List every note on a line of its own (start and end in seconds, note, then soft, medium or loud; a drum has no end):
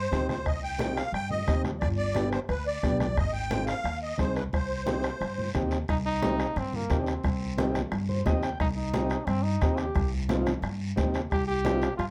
0.00 0.27 C5 medium
0.11 0.46 D#2 medium
0.11 0.35 C4 medium
0.11 0.36 D#4 medium
0.11 0.36 G4 medium
0.11 bombo low medium
0.11 bombo rim medium
0.11 high conga medium
0.11 short guiro medium
0.29 0.46 C5 medium
0.29 bombo rim medium
0.29 high conga medium
0.29 short guiro medium
0.46 1.00 C2 medium
0.46 0.62 D#5 medium
0.46 bombo low medium
0.46 bombo rim medium
0.46 long guiro medium
0.63 0.98 G5 medium
0.63 high conga soft
0.78 1.03 C4 medium
0.78 1.03 D#4 medium
0.78 1.03 G4 medium
0.78 bombo rim medium
0.78 high conga loud
0.78 short guiro medium
0.96 1.12 F5 medium
0.96 bombo rim medium
0.96 short guiro medium
1.13 1.40 G2 medium
1.13 1.29 G5 loud
1.13 bombo rim medium
1.13 high conga soft
1.13 long guiro medium
1.30 1.62 D#5 medium
1.30 high conga medium
1.47 1.83 D#2 medium
1.47 1.71 C4 medium
1.47 1.71 D#4 medium
1.47 1.71 G4 medium
1.47 bombo low medium
1.47 bombo rim medium
1.47 high conga medium
1.47 short guiro medium
1.64 bombo rim medium
1.64 high conga medium
1.64 short guiro medium
1.81 2.36 G1 loud
1.81 1.88 D5 medium
1.81 bombo low medium
1.81 bombo rim medium
1.81 long guiro medium
1.97 2.29 D5 medium
1.97 high conga soft
2.14 2.39 B3 medium
2.14 2.39 D4 medium
2.14 2.39 G4 medium
2.14 bombo rim medium
2.14 high conga medium
2.14 short guiro medium
2.32 2.40 C5 medium
2.32 bombo rim medium
2.32 short guiro medium
2.49 2.76 D2 medium
2.49 2.65 B4 medium
2.49 bombo rim medium
2.49 high conga soft
2.49 long guiro medium
2.66 2.98 D5 medium
2.83 3.19 B1 medium
2.83 3.07 B3 medium
2.83 3.07 D4 medium
2.83 3.07 G4 medium
2.83 bombo low medium
2.83 bombo rim medium
2.83 high conga medium
2.83 short guiro medium
3.00 3.17 D5 medium
3.00 bombo rim medium
3.00 high conga medium
3.00 short guiro medium
3.16 3.71 G#1 medium
3.16 3.33 D#5 medium
3.16 bombo low medium
3.16 bombo rim medium
3.16 long guiro medium
3.33 3.65 G5 loud
3.33 high conga soft
3.50 3.74 C4 medium
3.50 3.75 D#4 medium
3.50 3.75 G#4 medium
3.50 bombo rim medium
3.50 high conga loud
3.50 short guiro medium
3.67 3.99 F5 loud
3.67 bombo rim medium
3.67 short guiro medium
3.84 4.12 D#2 medium
3.84 bombo rim medium
3.84 high conga soft
3.84 long guiro medium
4.02 4.18 D#5 medium
4.18 4.46 C2 medium
4.18 4.42 C4 medium
4.18 4.43 D#4 medium
4.18 4.43 G#4 medium
4.18 4.35 C5 medium
4.18 bombo low medium
4.18 bombo rim medium
4.18 high conga medium
4.18 short guiro medium
4.36 4.44 B4 medium
4.36 bombo rim medium
4.36 short guiro medium
4.53 5.07 C2 medium
4.53 5.51 C5 medium
4.53 bombo low medium
4.53 bombo rim medium
4.53 long guiro medium
4.70 high conga soft
4.86 5.10 C4 medium
4.86 5.10 D#4 medium
4.86 5.10 G4 medium
4.86 bombo rim medium
4.86 high conga medium
4.86 short guiro medium
5.03 bombo rim medium
5.03 short guiro medium
5.20 5.48 G2 medium
5.20 bombo rim medium
5.20 high conga soft
5.20 long guiro medium
5.38 high conga medium
5.54 5.82 D#2 medium
5.54 5.78 C4 medium
5.54 5.78 D#4 medium
5.54 5.79 G4 medium
5.54 bombo low medium
5.54 bombo rim medium
5.54 high conga medium
5.54 short guiro medium
5.71 bombo rim medium
5.71 short guiro medium
5.88 6.43 C2 loud
5.88 5.97 D#4 loud
5.88 bombo low medium
5.88 bombo rim medium
5.88 long guiro medium
6.05 6.60 D#4 loud
6.05 high conga soft
6.22 6.46 C4 medium
6.22 6.46 D#4 medium
6.22 6.47 G4 medium
6.22 bombo rim medium
6.22 high conga loud
6.22 short guiro medium
6.40 bombo rim medium
6.40 short guiro medium
6.56 6.83 G2 medium
6.56 6.77 C4 medium
6.56 bombo rim medium
6.56 high conga soft
6.56 long guiro medium
6.73 7.00 A#3 medium
6.73 high conga medium
6.90 7.17 D#2 medium
6.90 7.14 C4 medium
6.90 7.14 D#4 medium
6.90 7.14 G4 medium
6.90 bombo low medium
6.90 bombo rim medium
6.90 high conga medium
6.90 short guiro medium
7.01 7.11 D4 medium
7.06 7.76 C4 medium
7.06 bombo rim medium
7.06 short guiro medium
7.24 7.78 C2 medium
7.24 bombo low medium
7.24 bombo rim medium
7.24 long guiro medium
7.41 high conga soft
7.57 7.81 C4 medium
7.57 7.82 D#4 medium
7.57 7.82 G4 medium
7.57 bombo rim medium
7.57 high conga loud
7.57 short guiro medium
7.75 bombo rim medium
7.75 low conga medium
7.75 short guiro medium
7.92 8.19 G2 loud
7.92 bombo rim medium
7.92 high conga soft
7.92 long guiro medium
8.09 8.25 C5 medium
8.09 high conga medium
8.26 8.53 D#2 medium
8.26 8.49 C4 medium
8.26 8.49 D#4 medium
8.26 8.50 G4 medium
8.26 8.42 D#5 medium
8.26 bombo low medium
8.26 bombo rim medium
8.26 high conga medium
8.26 low conga medium
8.26 short guiro medium
8.43 8.59 G5 medium
8.43 bombo rim medium
8.43 short guiro medium
8.60 9.14 C2 medium
8.60 8.68 D#4 loud
8.60 bombo low medium
8.60 bombo rim medium
8.60 long guiro medium
8.77 9.27 D#4 medium
8.77 high conga soft
8.93 9.17 C4 medium
8.93 9.18 D#4 medium
8.93 9.18 G4 medium
8.93 bombo rim medium
8.93 high conga medium
8.93 short guiro medium
9.10 bombo rim medium
9.10 short guiro medium
9.26 9.54 G2 medium
9.26 9.44 C4 medium
9.26 bombo rim medium
9.26 high conga soft
9.26 long guiro medium
9.43 9.78 D#4 medium
9.61 9.89 D#2 medium
9.61 9.86 C4 medium
9.61 9.86 D#4 medium
9.61 9.86 G4 medium
9.61 bombo low medium
9.61 bombo rim medium
9.61 high conga medium
9.61 short guiro medium
9.77 10.12 G4 loud
9.77 bombo rim medium
9.77 short guiro medium
9.95 10.50 C2 loud
9.95 bombo low medium
9.95 bombo rim medium
9.95 long guiro medium
10.12 high conga soft
10.29 10.53 C4 medium
10.29 10.53 D#4 medium
10.29 10.53 F4 medium
10.29 bombo rim medium
10.29 high conga loud
10.29 short guiro medium
10.46 bombo rim medium
10.46 low conga medium
10.46 short guiro medium
10.62 10.90 G2 loud
10.62 bombo rim medium
10.62 high conga soft
10.62 long guiro medium
10.96 11.24 D#2 medium
10.96 11.21 C4 medium
10.96 11.21 D#4 medium
10.96 11.21 G4 medium
10.96 bombo low medium
10.96 bombo rim medium
10.96 high conga medium
10.96 low conga medium
10.96 short guiro medium
11.14 bombo rim medium
11.14 short guiro medium
11.31 11.86 C2 medium
11.31 11.47 G4 loud
11.31 bombo low medium
11.31 bombo rim medium
11.31 long guiro medium
11.48 11.95 G4 loud
11.48 high conga soft
11.65 11.89 C4 medium
11.65 11.89 D#4 medium
11.65 11.89 F4 medium
11.65 bombo rim medium
11.65 high conga loud
11.65 short guiro medium
11.82 bombo rim medium
11.82 short guiro medium
11.97 12.11 G2 medium
11.97 12.05 F4 loud
11.97 bombo rim medium
11.97 high conga soft
11.97 long guiro medium